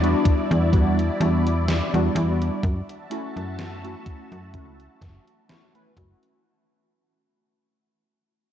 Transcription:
0.00 0.15 E2 medium
0.00 0.67 G3 medium
0.00 0.67 B3 medium
0.00 0.67 D4 medium
0.00 2.59 E4 medium
0.00 0.68 F#4 loud
0.00 2.59 D5 medium
0.00 closed hi-hat soft
0.25 kick loud
0.25 closed hi-hat medium
0.51 1.10 E2 loud
0.51 closed hi-hat soft
0.72 0.98 G3 medium
0.72 0.98 B3 medium
0.72 0.98 D4 medium
0.72 0.99 F#4 loud
0.72 kick loud
0.72 closed hi-hat medium
0.99 closed hi-hat soft
1.19 1.81 E2 loud
1.19 1.45 G3 medium
1.19 1.46 B3 medium
1.19 1.46 D4 medium
1.19 1.46 F#4 medium
1.19 closed hi-hat medium
1.47 closed hi-hat soft
1.68 snare loud
1.68 closed hi-hat medium
1.93 2.09 E2 medium
1.93 2.60 G3 medium
1.93 2.60 B3 medium
1.93 2.61 D4 medium
1.93 2.61 F#4 medium
1.93 closed hi-hat soft
2.15 2.50 E2 loud
2.15 closed hi-hat medium
2.42 closed hi-hat soft
2.63 2.81 F#2 loud
2.63 6.41 F#4 medium
2.63 6.41 E5 medium
2.63 6.41 A5 medium
2.63 kick loud
2.63 closed hi-hat medium
2.89 closed hi-hat soft
3.10 3.78 A3 loud
3.10 3.78 C#4 medium
3.10 3.78 E4 medium
3.10 3.78 F#4 loud
3.10 closed hi-hat loud
3.36 3.96 F#2 medium
3.36 closed hi-hat soft
3.59 snare loud
3.59 closed hi-hat medium
3.83 4.48 A3 medium
3.83 4.48 C#4 medium
3.83 4.49 E4 medium
3.83 4.49 F#4 loud
3.83 closed hi-hat soft
4.06 kick loud
4.06 closed hi-hat medium
4.32 4.55 F#2 loud
4.32 closed hi-hat soft
4.53 4.88 C#2 medium
4.53 4.79 A3 medium
4.53 4.79 C#4 medium
4.53 4.79 E4 medium
4.53 4.80 F#4 loud
4.53 kick loud
4.53 closed hi-hat medium
4.80 closed hi-hat soft
5.01 5.20 F#1 medium
5.01 kick medium
5.01 snare medium
5.01 closed hi-hat loud
5.28 closed hi-hat soft
5.48 5.68 A3 medium
5.48 5.69 C#4 medium
5.48 5.69 E4 medium
5.48 5.69 F#4 medium
5.48 snare loud
5.48 closed hi-hat medium
5.74 5.91 A3 medium
5.74 5.91 C#4 medium
5.74 5.92 E4 medium
5.74 5.92 B4 medium
5.74 closed hi-hat soft
5.96 6.15 F#1 loud
5.96 6.41 A3 medium
5.96 6.42 C#4 medium
5.96 6.42 E4 medium
5.96 6.42 F#4 medium
5.96 kick medium
5.96 closed hi-hat loud
6.23 closed hi-hat soft

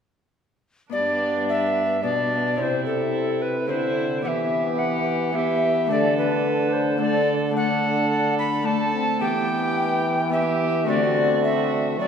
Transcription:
0.90 2.61 G2 soft
0.90 2.05 G2 medium
0.90 2.00 B3 soft
0.90 1.99 B3 medium
0.90 2.01 D4 soft
0.90 1.99 D4 medium
0.90 1.44 D5 medium
1.49 2.03 E5 medium
2.01 2.61 B2 soft
2.01 2.58 B2 soft
2.01 2.60 B3 soft
2.01 2.60 D4 soft
2.01 2.60 D4 medium
2.01 2.59 D5 medium
2.56 4.27 C3 soft
2.56 3.72 C3 medium
2.56 3.65 C4 soft
2.56 3.69 C4 medium
2.56 3.66 E4 soft
2.56 3.69 E4 medium
2.56 2.63 C#5 medium
2.62 2.85 C5 medium
2.86 3.43 A4 medium
3.42 3.68 B4 soft
3.66 4.27 D3 soft
3.66 4.27 D3 medium
3.66 4.26 C4 soft
3.66 4.27 C4 soft
3.66 4.22 E4 soft
3.66 4.24 E4 medium
3.66 4.23 C5 medium
4.22 5.92 E3 soft
4.22 5.92 E3 medium
4.22 5.31 B3 soft
4.22 5.35 B3 medium
4.22 5.33 E4 soft
4.22 5.33 G4 medium
4.22 4.29 F#5 medium
4.28 4.80 E5 medium
4.79 5.37 F#5 medium
5.32 5.91 B3 soft
5.32 5.92 B3 medium
5.32 5.92 E4 soft
5.32 5.89 G4 medium
5.32 5.90 E5 medium
5.87 8.93 D3 medium
5.87 9.24 D3 soft
5.87 6.96 A3 soft
5.87 6.97 D4 soft
5.87 6.99 D4 medium
5.87 6.98 A4 soft
5.91 6.98 A4 medium
5.91 6.17 D5 medium
6.18 6.74 B4 medium
6.73 7.00 C5 medium
6.97 7.50 A3 soft
6.97 7.51 D4 soft
6.97 7.35 D4 medium
6.97 7.52 A4 soft
6.97 7.54 A4 medium
6.97 7.36 D5 medium
7.51 8.61 A3 soft
7.51 8.63 D4 soft
7.51 8.64 A4 soft
7.56 8.62 D4 medium
7.56 8.64 A4 medium
7.56 8.35 F#5 medium
8.38 8.67 B5 medium
8.63 9.22 A3 medium
8.63 9.22 D4 medium
8.63 8.96 D4 medium
8.63 9.23 A4 soft
8.63 9.23 A4 medium
8.63 9.20 A5 medium
8.94 9.23 C4 medium
9.19 10.90 E3 medium
9.19 10.29 B3 medium
9.19 10.32 B3 medium
9.19 10.30 E4 medium
9.19 10.32 G4 medium
9.19 10.30 G5 medium
10.30 10.89 B3 medium
10.30 10.90 B3 medium
10.30 10.89 E4 soft
10.30 10.87 G4 medium
10.30 10.86 E5 medium
10.84 12.08 D3 medium
10.84 12.01 D3 medium
10.84 12.08 A3 soft
10.84 12.08 C4 soft
10.84 11.99 C4 medium
10.84 12.08 F#4 medium
10.84 11.97 F#4 medium
10.88 11.42 D5 medium
11.43 11.98 E5 medium
11.99 12.08 F#3 soft
11.99 12.08 F#3 medium
11.99 12.08 C4 medium
11.99 12.08 F#4 medium
11.99 12.08 D5 medium

